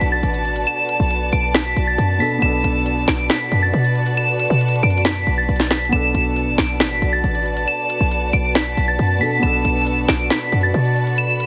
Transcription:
0.00 0.22 B1 loud
0.00 2.14 B2 medium
0.00 2.16 B3 medium
0.00 2.17 D4 medium
0.00 2.38 F#4 medium
0.00 2.18 A4 medium
0.00 2.38 B4 medium
0.00 2.38 D5 medium
0.00 5.89 A5 loud
0.00 0.10 B6 medium
0.00 closed hi-hat medium
0.12 0.64 A6 medium
0.23 0.65 A1 loud
0.23 closed hi-hat medium
0.34 closed hi-hat soft
0.45 closed hi-hat soft
0.56 closed hi-hat medium
0.67 1.29 E7 loud
0.67 closed hi-hat medium
0.89 closed hi-hat medium
1.00 1.31 B1 loud
1.11 closed hi-hat medium
1.32 1.75 B1 loud
1.32 1.50 D7 medium
1.32 closed hi-hat medium
1.54 1.85 B6 medium
1.54 finger snap medium
1.54 snare loud
1.54 closed hi-hat medium
1.65 closed hi-hat soft
1.76 1.97 B1 loud
1.76 closed hi-hat medium
1.87 2.18 A6 medium
1.98 2.19 F#2 loud
1.98 closed hi-hat medium
2.19 2.37 B2 soft
2.19 2.39 B3 soft
2.19 2.42 D4 soft
2.19 2.43 A4 medium
2.19 2.37 B6 medium
2.19 open hi-hat medium
2.39 2.63 B1 loud
2.39 5.87 B2 medium
2.39 5.88 B3 medium
2.39 5.89 F#4 medium
2.39 5.89 B4 medium
2.39 5.89 D5 medium
2.39 3.04 E7 loud
2.39 closed hi-hat medium
2.43 5.89 D4 medium
2.43 5.90 A4 medium
2.64 3.06 B1 loud
2.64 closed hi-hat medium
2.86 closed hi-hat medium
3.08 3.29 B1 loud
3.08 3.25 D7 medium
3.08 finger snap medium
3.08 snare loud
3.08 closed hi-hat medium
3.30 3.61 B6 medium
3.30 finger snap medium
3.30 snare loud
3.30 closed hi-hat soft
3.37 closed hi-hat medium
3.44 closed hi-hat medium
3.52 3.73 F#2 loud
3.52 closed hi-hat medium
3.63 4.14 A6 medium
3.74 4.47 B2 loud
3.74 closed hi-hat medium
3.85 closed hi-hat soft
3.96 closed hi-hat soft
4.06 closed hi-hat medium
4.17 4.79 E7 loud
4.17 closed hi-hat medium
4.40 closed hi-hat medium
4.50 4.82 B2 loud
4.61 closed hi-hat medium
4.68 closed hi-hat medium
4.76 closed hi-hat medium
4.83 5.25 F#2 loud
4.83 5.00 D7 medium
4.83 closed hi-hat medium
4.90 closed hi-hat medium
4.98 closed hi-hat medium
5.05 5.36 B6 medium
5.05 finger snap loud
5.05 snare loud
5.05 closed hi-hat medium
5.12 closed hi-hat medium
5.19 closed hi-hat soft
5.27 5.48 B1 loud
5.27 closed hi-hat medium
5.38 5.69 A6 medium
5.49 5.91 B1 loud
5.49 closed hi-hat soft
5.56 snare medium
5.56 closed hi-hat medium
5.63 closed hi-hat medium
5.71 5.88 B6 medium
5.71 finger snap medium
5.71 snare medium
5.71 closed hi-hat medium
5.71 open hi-hat medium
5.78 closed hi-hat medium
5.85 9.15 B2 medium
5.85 closed hi-hat medium
5.91 6.14 B1 loud
5.91 9.16 B3 medium
5.91 9.18 D4 medium
5.91 11.46 F#4 medium
5.91 11.46 B4 medium
5.91 9.39 D5 medium
5.91 11.14 A5 medium
5.91 6.54 E7 loud
5.91 closed hi-hat medium
5.96 9.19 A4 medium
6.14 6.49 B1 loud
6.14 closed hi-hat medium
6.36 closed hi-hat medium
6.47 6.58 A1 loud
6.58 6.82 B1 loud
6.58 6.75 D7 medium
6.58 finger snap medium
6.58 snare loud
6.58 closed hi-hat medium
6.80 7.01 A1 loud
6.80 7.11 B6 medium
6.80 finger snap loud
6.80 snare loud
6.80 closed hi-hat soft
6.87 closed hi-hat medium
6.95 closed hi-hat medium
7.02 7.23 B1 loud
7.02 closed hi-hat medium
7.13 7.64 A6 loud
7.24 7.66 A1 loud
7.24 closed hi-hat medium
7.35 closed hi-hat soft
7.46 closed hi-hat soft
7.57 closed hi-hat medium
7.67 8.29 E7 loud
7.67 closed hi-hat medium
7.90 closed hi-hat medium
8.01 8.32 B1 loud
8.11 closed hi-hat medium
8.33 8.75 B1 loud
8.33 8.50 D7 medium
8.33 closed hi-hat medium
8.55 8.86 B6 medium
8.55 finger snap loud
8.55 snare loud
8.55 closed hi-hat medium
8.66 closed hi-hat soft
8.77 8.98 B1 loud
8.77 closed hi-hat medium
8.88 9.19 A6 medium
8.99 9.20 F#2 loud
8.99 closed hi-hat medium
9.19 9.38 B2 soft
9.19 9.40 B3 soft
9.19 9.43 D4 soft
9.19 9.44 A4 medium
9.19 9.38 B6 medium
9.19 open hi-hat medium
9.39 9.64 B1 loud
9.39 11.46 B2 medium
9.39 11.46 B3 medium
9.39 11.46 D5 medium
9.39 10.05 E7 loud
9.39 closed hi-hat medium
9.44 11.46 D4 medium
9.44 11.46 A4 medium
9.65 10.07 B1 loud
9.65 closed hi-hat medium
9.87 closed hi-hat medium
10.08 10.30 B1 loud
10.08 10.26 D7 medium
10.08 finger snap medium
10.08 snare loud
10.08 closed hi-hat medium
10.30 10.61 B6 medium
10.30 finger snap loud
10.30 snare loud
10.30 closed hi-hat soft
10.38 closed hi-hat medium
10.45 closed hi-hat medium
10.52 10.73 F#2 loud
10.52 closed hi-hat medium
10.63 11.15 A6 medium
10.74 11.46 B2 loud
10.74 closed hi-hat medium
10.85 closed hi-hat soft
10.96 closed hi-hat soft
11.07 closed hi-hat medium
11.18 11.46 B5 loud
11.18 11.46 E7 loud
11.18 closed hi-hat medium
11.40 closed hi-hat medium

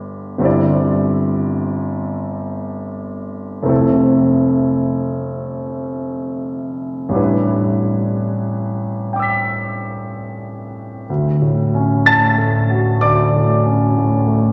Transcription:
0.00 0.37 G1 medium
0.00 0.38 G3 soft
0.00 0.38 B3 soft
0.00 0.40 E4 soft
0.00 0.40 D5 soft
0.38 3.62 G1 medium
0.38 3.63 G3 soft
0.38 3.64 C4 medium
0.43 3.65 E4 soft
0.43 3.66 D5 medium
3.63 7.10 F1 medium
3.63 7.11 A3 soft
3.63 7.11 C4 soft
3.68 7.12 E4 soft
3.68 7.13 A4 soft
7.09 11.00 A1 soft
7.09 11.01 G3 soft
7.09 11.02 D4 soft
7.14 11.03 E4 soft
7.14 11.04 B4 soft
9.13 11.05 G5 soft
9.13 11.06 D6 soft
9.19 11.08 E6 soft
9.19 11.09 B6 soft
11.10 12.97 D2 soft
11.42 11.94 A2 soft
11.74 12.26 C#4 soft
12.06 12.58 A2 soft
12.06 12.97 A5 medium
12.06 13.01 A6 medium
12.38 12.88 A3 soft
12.70 13.19 F#4 soft
13.01 14.52 D2 soft
13.01 14.52 D5 medium
13.01 14.52 D6 medium
13.35 13.84 A2 soft
13.65 14.15 C#4 soft
13.97 14.48 A2 soft
14.27 14.52 A3 soft

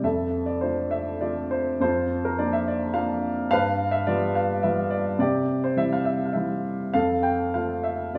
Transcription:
0.03 1.78 F2 soft
0.03 0.90 A4 soft
0.03 0.50 E5 medium
0.46 0.61 D5 medium
0.61 1.19 A3 soft
0.61 1.20 D4 soft
0.61 1.20 F4 soft
0.61 0.90 C5 medium
0.91 1.23 E5 medium
1.21 1.79 A3 soft
1.21 1.79 D4 soft
1.21 1.80 F4 soft
1.21 1.49 D5 medium
1.51 1.80 C5 medium
1.80 3.46 F2 medium
1.80 2.64 F4 soft
1.80 2.27 C5 medium
2.25 2.38 A#4 medium
2.39 2.92 F3 soft
2.39 2.93 A#3 soft
2.39 2.93 D4 soft
2.39 2.53 D5 medium
2.53 2.68 E5 medium
2.68 2.93 D5 medium
2.94 3.49 F3 soft
2.94 3.49 A#3 soft
2.94 3.49 D4 soft
2.94 3.33 F5 medium
3.51 5.16 G2 medium
3.51 4.33 B4 medium
3.51 3.90 F5 medium
3.91 4.05 E5 medium
4.07 4.62 G3 soft
4.07 4.62 B3 soft
4.07 4.62 F4 soft
4.07 4.36 D5 medium
4.35 4.64 F5 medium
4.63 5.19 G3 soft
4.63 5.19 B3 soft
4.63 5.19 F4 soft
4.63 4.89 E5 medium
4.90 5.18 D5 medium
5.19 6.90 C3 medium
5.19 6.03 G4 medium
5.19 5.60 D5 medium
5.64 5.77 C5 medium
5.77 6.33 G3 soft
5.77 6.33 C4 soft
5.77 6.34 E4 soft
5.77 5.91 E5 medium
5.93 6.06 F5 medium
6.05 6.27 E5 medium
6.26 6.34 F5 soft
6.33 6.92 G3 soft
6.33 6.92 C4 soft
6.33 6.93 E4 soft
6.33 6.95 E5 soft
6.94 8.18 F2 soft
6.94 7.81 A4 medium
6.94 7.25 F5 medium
7.23 7.55 G5 medium
7.54 8.12 A3 soft
7.54 8.13 C4 soft
7.54 8.13 F4 soft
7.54 7.85 F5 medium
7.84 8.15 E5 medium
8.14 8.18 A3 soft
8.14 8.18 C4 soft
8.14 8.18 F4 soft
8.14 8.18 D5 medium

